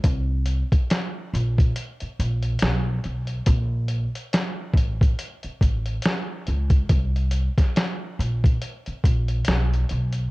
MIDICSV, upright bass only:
0, 0, Header, 1, 3, 480
1, 0, Start_track
1, 0, Tempo, 857143
1, 24, Time_signature, 4, 2, 24, 8
1, 5772, End_track
2, 0, Start_track
2, 0, Title_t, "Upright bass"
2, 0, Program_c, 0, 32
2, 25, Note_on_c, 0, 36, 98
2, 343, Note_off_c, 0, 36, 0
2, 748, Note_on_c, 0, 34, 93
2, 947, Note_off_c, 0, 34, 0
2, 1229, Note_on_c, 0, 34, 94
2, 1428, Note_off_c, 0, 34, 0
2, 1470, Note_on_c, 0, 35, 98
2, 1668, Note_off_c, 0, 35, 0
2, 1710, Note_on_c, 0, 35, 81
2, 1908, Note_off_c, 0, 35, 0
2, 1942, Note_on_c, 0, 34, 103
2, 2262, Note_off_c, 0, 34, 0
2, 2654, Note_on_c, 0, 33, 85
2, 2859, Note_off_c, 0, 33, 0
2, 3145, Note_on_c, 0, 33, 85
2, 3345, Note_off_c, 0, 33, 0
2, 3629, Note_on_c, 0, 37, 82
2, 3828, Note_off_c, 0, 37, 0
2, 3865, Note_on_c, 0, 36, 94
2, 4183, Note_off_c, 0, 36, 0
2, 4588, Note_on_c, 0, 34, 89
2, 4787, Note_off_c, 0, 34, 0
2, 5066, Note_on_c, 0, 34, 88
2, 5266, Note_off_c, 0, 34, 0
2, 5310, Note_on_c, 0, 35, 91
2, 5508, Note_off_c, 0, 35, 0
2, 5549, Note_on_c, 0, 35, 84
2, 5748, Note_off_c, 0, 35, 0
2, 5772, End_track
3, 0, Start_track
3, 0, Title_t, "Muted upright bass strokes"
3, 1130, Note_on_c, 9, 29, 42
3, 1186, Note_off_c, 9, 29, 0
3, 3049, Note_on_c, 9, 29, 44
3, 3105, Note_off_c, 9, 29, 0
3, 4971, Note_on_c, 9, 29, 48
3, 5027, Note_off_c, 9, 29, 0
3, 5772, End_track
0, 0, End_of_file